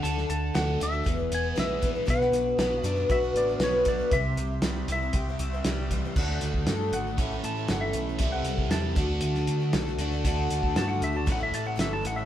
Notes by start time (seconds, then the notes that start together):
0.03 D2 D3 A3 D4 F#4 A4 A5, closed hi-hat
0.18 snare
0.29 D2 A3 D4 F#4 A4 A5, closed hi-hat
0.54 D2 D3 A3 D4 F#4 A4 F#5, snare, closed hi-hat
0.80 D2 A3 D4 F#4 A4 E5, closed hi-hat
0.92 D4 F#4 A4
1.04 E1 E2 E3 B3 E4 G#4 B4, kick, closed hi-hat
1.17 E4 G#4 B4
1.31 E1 B3 G#5, closed hi-hat
1.42 E4 G#4 B4
1.55 A#1 E3 G#3 B3 E4 G#4 B4 E5, snare, closed hi-hat
1.82 E3 B3 E4 G#4 B4, kick, closed hi-hat
1.95 E4 G#4 B4
2.06 B1 B2 F#3 B3 D4 F#4 B4, kick, closed hi-hat
2.10 F#5
2.21 snare
2.31 B1 B3 D4 F#4 B4, snare, closed hi-hat
2.58 B1 B2 F#3 B3 D4 F#4 B4, snare, closed hi-hat
2.83 F#2 B3 D4 F#4 B4 E5, closed hi-hat
2.96 B3 D4 F#4 B4
3.09 B1 F#4 E5, kick, closed hi-hat
3.22 B3 D4 F#4 B4
3.33 A1 D4 D5, closed hi-hat
3.48 B3 D4 F#4 B4
3.59 B1 B2 F#3 B3 D4, snare, closed hi-hat
3.63 F#4 B4 C#5
3.85 F#3 B3 D4 F#4 D5, kick, closed hi-hat
3.90 B4
3.99 B3 D4 F#4 B4
4.11 C2 C3 E3 G3 C4 E4 C5 E5, kick, closed hi-hat
4.37 C2 G3 C4 E4 C5, closed hi-hat
4.62 C2 C3 E3 G3 C4 E4 C5, snare, closed hi-hat
4.88 C2 G3 C4 E4 C5, closed hi-hat
4.92 E5
5.02 G3 C4 E4 C5
5.13 C2 G4, kick, closed hi-hat
5.29 G3 C4 E4 C5
5.39 C2 E4, closed hi-hat
5.53 G3 C4 E4 C5
5.65 C2 C3 E3 G3 C4 E4 C5, snare, closed hi-hat
5.91 E3 G3 C4 E4 C5, kick, closed hi-hat
6.05 G3 C4 E4 C5
6.16 D2 D3 A3 D4 F#4 A4, kick, crash
6.41 D2 A3 D4 F#4 A4, closed hi-hat
6.54 kick
6.66 G2 D3 A3 D4 F#4 A4, snare, closed hi-hat
6.91 G#1 A3 D4 F#5, closed hi-hat
6.96 F#4 A4
7.07 D4 F#4 A4
7.18 A1 A2 E3 A3 C#4 E4 A4, kick, closed hi-hat
7.32 A3 C#4 E4 A4
7.43 A2 A5, closed hi-hat
7.57 A3 C#4 E4 A4
7.68 G1 A2 E3 A3 C#4 E4 A4 F#5, snare, closed hi-hat
7.81 E5
7.93 B1 A3 C#4 E4, closed hi-hat
7.97 A4
8.09 A3 C#4 E4 A4
8.19 C2 C3 E3 G3, kick, closed hi-hat
8.23 C4 E4 A4
8.32 F#5
8.44 C2 G3, closed hi-hat
8.48 C4 E4 A4
8.58 kick
8.69 E2 C3 E3 G3 C4 E4 A4 A5, snare, closed hi-hat
8.95 D2 D3 A3, kick, closed hi-hat
8.99 D4 F#4 A4
9.11 D4 F#4 A4
9.21 D2, closed hi-hat
9.35 D4 F#4 A4, snare
9.47 D3, closed hi-hat
9.60 D4 F#4 A4
9.73 B1 D3 A3 D4 F#4 A4, snare, closed hi-hat
9.87 snare
9.98 D2 D3 A3 D4 F#4, closed hi-hat
10.02 A4
10.12 D4 F#4 A4
10.25 D2 D3 A3 D4 F#4 A4, kick, closed hi-hat
10.50 D2 A3 D4 F#4 A4, closed hi-hat
10.63 kick
10.76 G2 D3 A3 D4 F#4 A4 A5, snare, closed hi-hat
10.88 F#5
11.01 D2 A3 D4 F#4 A4 E5, closed hi-hat
11.13 D4 F#4 A4 A5
11.26 A1 A2 E3 A3 C#4 E4 A4, kick, closed hi-hat
11.32 F#5
11.38 A3 C#4 E4 A4
11.43 E5
11.52 A2 A5, closed hi-hat
11.64 A3 C#4 E4 A4 F#5
11.76 G1 A2 E3 A3 C#4 E4 A4, snare, closed hi-hat
11.80 E5
11.93 A5
12.03 A1 A3 C#4 E4 A4 F#5, closed hi-hat
12.15 A3 C#4 E4 A4 E5